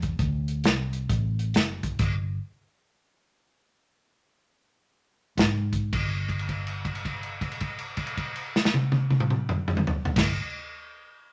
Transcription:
Already playing: fingered electric bass E2
0.02 kick, closed hi-hat
0.19 fingered electric bass D2, kick, closed hi-hat
0.48 closed hi-hat
0.64 fingered electric bass C2, snare, closed hi-hat
0.93 closed hi-hat
1.09 fingered electric bass A1, kick, closed hi-hat
1.39 closed hi-hat
1.54 fingered electric bass F#1, snare, closed hi-hat
1.83 kick, closed hi-hat
1.99 fingered electric bass G1, kick, closed hi-hat, crash
5.37 fingered electric bass G#2, kick, snare, closed hi-hat
5.73 kick, closed hi-hat
5.93 fingered electric bass G1, kick, crash
6.29 kick, crash
6.39 crash
6.49 kick, crash
6.67 crash
6.85 kick, crash
6.95 crash
7.05 kick, crash
7.23 crash
7.41 kick, crash
7.51 crash
7.60 kick, crash
7.78 crash
7.97 kick, crash
8.07 crash
8.17 kick, crash
8.36 crash
8.56 snare
8.65 snare
8.74 high tom
8.92 high tom
9.10 high tom
9.20 mid tom
9.30 mid tom
9.49 mid tom
9.68 mid tom
9.77 mid tom
9.87 floor tom
10.05 floor tom
10.16 fingered electric bass G1, kick, snare, crash

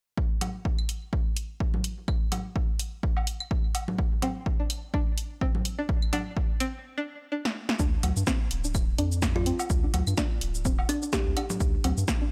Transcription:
0.17 kick
0.41 closed hi-hat, low conga, low woodblock
0.65 kick
0.79 claves
0.89 closed hi-hat
1.13 kick
1.37 closed hi-hat
1.60 kick
1.74 low conga
1.84 closed hi-hat
2.08 kick, claves
2.32 closed hi-hat, low conga, low woodblock
2.56 kick
2.79 closed hi-hat
3.03 kick
3.17 low woodblock
3.27 closed hi-hat
3.40 claves
3.51 kick
3.75 closed hi-hat, low woodblock
3.88 low conga
3.98 kick
4.22 synth pluck C4, closed hi-hat, low conga, low woodblock
4.46 kick
4.60 synth pluck D4
4.70 closed hi-hat, claves
4.94 synth pluck D4, kick
5.18 closed hi-hat
5.41 synth pluck C4, kick
5.55 low conga
5.65 closed hi-hat
5.79 synth pluck D4
5.89 kick
6.02 claves
6.13 synth pluck D4, closed hi-hat, low conga, low woodblock
6.37 kick
6.60 synth pluck C4, closed hi-hat
6.98 synth pluck D4
7.32 synth pluck D4
7.45 snare
7.69 snare
7.79 analog synth bass D2, synth pluck D4, kick, cabasa
8.03 analog synth bass D2, closed hi-hat, low conga, low woodblock
8.17 analog synth bass G2, cabasa
8.27 synth pluck C4, kick, snare, cabasa
8.51 analog synth bass D1, closed hi-hat
8.64 synth pluck D4, cabasa
8.75 kick, cabasa, claves
8.98 analog synth bass F2, synth pluck D4, closed hi-hat
9.12 cabasa
9.22 kick, snare, cabasa
9.36 kalimba F4, low conga
9.46 synth pluck C4, closed hi-hat
9.59 cabasa, low woodblock
9.70 analog synth bass D2, kick, cabasa
9.83 synth pluck D4
9.94 analog synth bass D2, closed hi-hat, low conga, low woodblock
10.07 analog synth bass G2, cabasa, claves
10.18 synth pluck D4, kick, snare, cabasa
10.41 analog synth bass D1, closed hi-hat
10.55 cabasa
10.65 synth pluck C4, kick, cabasa
10.79 low woodblock
10.89 kalimba D4, closed hi-hat
11.02 synth pluck D4, cabasa
11.13 kalimba G4, kick, snare, cabasa
11.26 analog synth bass D2
11.37 synth pluck D4, closed hi-hat, claves, low woodblock
11.50 low conga, cabasa
11.60 analog synth bass D2, kick, cabasa
11.84 analog synth bass D2, synth pluck C4, closed hi-hat, low conga, low woodblock
11.98 analog synth bass G2, cabasa
12.08 kick, snare, cabasa
12.21 synth pluck D4

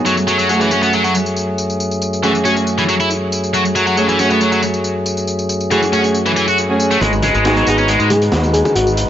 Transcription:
Already playing: tonewheel organ F#3 G#4
0.06 tonewheel organ F#2 A3, distorted electric guitar F#3, tambourine
0.17 tambourine
0.28 distorted electric guitar F#3, tambourine
0.39 distorted electric guitar F#3, tambourine
0.49 distorted electric guitar F#3, string section A3 C#4 F#4 G#4, tambourine
0.61 distorted electric guitar E3, tambourine
0.71 string section A3 C#4 F#4 G#4, distorted electric guitar C#4, tambourine
0.82 distorted electric guitar B3, tambourine
0.93 distorted electric guitar F#3, tambourine
1.04 distorted electric guitar F#3, tambourine
1.15 tambourine
1.26 tambourine
1.36 tambourine
1.58 tambourine
1.70 tambourine
1.80 tambourine
1.91 tambourine
2.02 tambourine
2.13 tambourine
2.23 distorted electric guitar E3, string section A3 C#4 F#4 G#4, tambourine
2.35 tambourine
2.45 string section A3 C#4 F#4 G#4, distorted electric guitar C#4, tambourine
2.56 tambourine
2.67 tambourine
2.78 distorted electric guitar E3, tambourine
2.89 distorted electric guitar F#3, tambourine
3.00 distorted electric guitar E4, tambourine
3.11 tambourine
3.32 tambourine
3.44 tambourine
3.54 distorted electric guitar F#3, tambourine
3.65 tambourine
3.76 distorted electric guitar F#3, tambourine
3.87 distorted electric guitar F#3, tambourine
3.97 distorted electric guitar F#3, string section A3 C#4 F#4 G#4, tambourine
4.09 distorted electric guitar E3, tambourine
4.19 string section A3 C#4 F#4 G#4, distorted electric guitar C#4, tambourine
4.30 distorted electric guitar B3, tambourine
4.41 distorted electric guitar F#3, tambourine
4.52 distorted electric guitar F#3, tambourine
4.62 tambourine
4.74 tambourine
4.84 tambourine
5.06 tambourine
5.17 tambourine
5.27 tambourine
5.39 tambourine
5.49 tambourine
5.61 tambourine
5.71 distorted electric guitar E3, string section A3 C#4 F#4 G#4, tambourine
5.83 tambourine
5.93 string section A3 C#4 F#4 G#4, distorted electric guitar C#4, tambourine
6.04 tambourine
6.14 tambourine
6.26 distorted electric guitar E3, tambourine
6.36 distorted electric guitar E3, tambourine
6.48 distorted electric guitar F#4, tambourine
6.58 tambourine
6.69 string section A3 C#4 F#4 G#4
6.80 tambourine
6.91 distorted electric guitar A3, tambourine
7.01 fingered electric bass G#1, tonewheel organ G#3 D#4 F#4 B4, distorted electric guitar G#3, kick, closed hi-hat, tambourine, riser
7.13 tambourine
7.23 distorted electric guitar G#3, kick, closed hi-hat, tambourine
7.34 fingered electric bass G#1, distorted electric guitar G#3, tambourine
7.45 distorted electric guitar G#3, string section B3 D#4 F#4 G#4, snare, closed hi-hat, tambourine
7.56 distorted electric guitar F#3, closed hi-hat, tambourine
7.67 fingered electric bass G#1, string section B3 D#4 F#4 G#4, distorted electric guitar D#4, closed hi-hat, tambourine
7.78 distorted electric guitar C#4, tambourine
7.88 distorted electric guitar G#3, closed hi-hat, tambourine
8.00 fingered electric bass G#2, distorted electric guitar G#3, tambourine
8.10 fm electric piano G#4, kick, closed hi-hat, tambourine
8.22 closed hi-hat, tambourine
8.32 fingered electric bass D#2, snare, closed hi-hat, tambourine
8.44 tambourine
8.53 fm electric piano G#4, closed hi-hat, tambourine
8.65 fm electric piano G#4, kick, tambourine
8.75 fingered electric bass G#1, fm electric piano F#4, closed hi-hat, tambourine
8.87 tambourine
8.97 closed hi-hat, tambourine

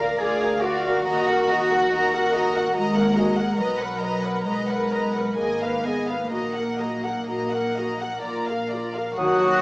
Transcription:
Already playing: harp D3 A#3 D4 F4 A#4 F5, cello section A#4
0.00 viola section A#4, violin section D5 F5
0.19 double bass section D2, harp F4, viola section F4, cello section G#4, violin section D5 F5
0.40 harp A#3, viola section A#4, violin section D5 F5
0.62 harp D4, viola section F4, cello section F#4, violin section D5 F5
0.84 harp A#3, viola section A#4, violin section D5 F5
1.04 double bass section D#2, harp D#3, viola section F#4, violin section D#5 A#5
1.26 harp A#3, viola section A#4, violin section F#5
1.48 harp D#4, viola section F#4, violin section D#5 A#5
1.70 harp F#4, viola section A#4, violin section F#5
1.90 double bass section D#2, viola section F#4, harp A#4, violin section D#5
1.95 violin section A#5
2.12 viola section A#4, harp D#5, violin section F#5
2.32 viola section F#4, violin section D#5 A#5, harp F#5
2.52 viola section A#4, harp D#5, violin section F#5
2.73 double bass section D#2, cello section G#3, viola section F#4, harp A#4, violin section D#5 A#5
2.95 harp F#4, viola section A#4, violin section F#5
3.13 harp D#4, viola section F#4, violin section D#5 A#5
3.34 harp A#3, viola section A#4, violin section F#5
3.54 harp B2, violin section A#5
3.58 double bass section B1, cello section F#3, viola section B4, violin section D#5
3.77 violin section F#5
3.81 harp F#3, viola section A#4, violin section B4
3.99 violin section D#5 A#5
4.03 harp A#3, viola section B4
4.21 harp D#4, viola section A#4, violin section B4 F#5
4.44 double bass section B1, cello section G#3, harp F#4, viola section B4, violin section D#5 A#5
4.66 harp A#4, violin section B4 F#5
4.71 viola section A#4
4.91 viola section B4, harp D#5, violin section D#5 A#5
5.13 harp A#4, viola section A#4, violin section B4 F#5
5.37 double bass section G#1, harp G#2, cello section A#3, viola section G#4, violin section D#5 G#5
5.60 harp D#3, viola section B4, violin section F5
5.84 harp G#3, cello section B3, viola section G#4, violin section D#5 G#5
6.07 harp D#4, viola section B4, violin section F5
6.30 double bass section A#1, harp A#2, cello section A#3, viola section F#4, violin section D#5 A#5
6.53 harp A#3, violin section F#5
6.58 viola section A#4
6.78 harp F#3, viola section F#4, violin section D#5 A#5
7.02 harp D#4, viola section A#4, violin section F#5
7.06 violin section F#5
7.26 double bass section A#1, harp A#4, violin section D#5 A#5
7.30 viola section F#4
7.51 harp F#4, violin section F#5
7.55 viola section A#4
7.74 viola section F#4, harp D#5, violin section D#5 A#5
7.99 harp F#4, viola section A#4, violin section F#5
8.22 double bass section A#1, harp A#2, viola section F4, violin section D5 A#5
8.46 harp A#3, viola section A#4, violin section F5
8.70 harp F3, viola section F4, violin section D5 A#5
8.95 harp D4, viola section A#4, violin section F5
9.17 double bass section D#2, cello section D#2, harp D#3, viola section D#3 F#4, bassoon F#3, french horn section F#3, violin section F#4 F#5, flute section F#4, trumpet section F#4, oboe D#6
9.40 harp F#3, viola section F#3

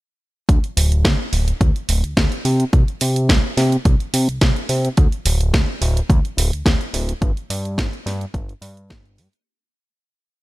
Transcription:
0.49 analog synth bass D2, kick, closed hi-hat
0.64 closed hi-hat
0.77 analog synth bass D1, open hi-hat
0.92 closed hi-hat
1.05 analog synth bass D2, kick, snare, closed hi-hat
1.33 analog synth bass D1, open hi-hat
1.48 closed hi-hat
1.61 analog synth bass D2, kick, closed hi-hat
1.76 closed hi-hat
1.89 analog synth bass D1, open hi-hat
2.04 analog synth bass D2, closed hi-hat
2.17 analog synth bass D2, kick, snare, closed hi-hat
2.32 closed hi-hat
2.45 analog synth bass C3, open hi-hat
2.60 closed hi-hat
2.73 analog synth bass C2, kick, closed hi-hat
2.88 closed hi-hat
3.01 analog synth bass C3, open hi-hat
3.16 closed hi-hat
3.29 analog synth bass C2, kick, snare, closed hi-hat
3.57 analog synth bass C3, snare, open hi-hat
3.72 closed hi-hat
3.85 analog synth bass C2, kick, closed hi-hat
4.00 closed hi-hat
4.14 analog synth bass C3, open hi-hat
4.29 analog synth bass C2, closed hi-hat
4.41 analog synth bass C2, kick, snare, closed hi-hat
4.56 closed hi-hat
4.69 analog synth bass C3, open hi-hat
4.85 closed hi-hat
4.97 analog synth bass D2, kick, closed hi-hat
5.12 closed hi-hat
5.25 analog synth bass D1, open hi-hat
5.41 closed hi-hat
5.53 analog synth bass D2, kick, snare, closed hi-hat
5.81 analog synth bass D1, open hi-hat
5.97 closed hi-hat
6.09 analog synth bass D2, kick, closed hi-hat
6.25 closed hi-hat
6.37 analog synth bass D1, open hi-hat
6.52 analog synth bass D2, closed hi-hat
6.66 analog synth bass D2, kick, snare, closed hi-hat
6.81 closed hi-hat
6.93 analog synth bass D1, open hi-hat
7.09 closed hi-hat
7.21 analog synth bass G1, kick, closed hi-hat
7.37 closed hi-hat
7.50 analog synth bass G2, open hi-hat
7.65 closed hi-hat
7.78 analog synth bass G1, kick, snare, closed hi-hat
7.93 closed hi-hat
8.06 analog synth bass G2, snare, open hi-hat
8.21 closed hi-hat
8.34 analog synth bass G1, kick, closed hi-hat
8.49 closed hi-hat
8.61 analog synth bass G2, open hi-hat
8.77 closed hi-hat
8.90 analog synth bass G1, kick, snare, closed hi-hat
9.05 closed hi-hat
9.18 analog synth bass G2, open hi-hat
9.33 closed hi-hat

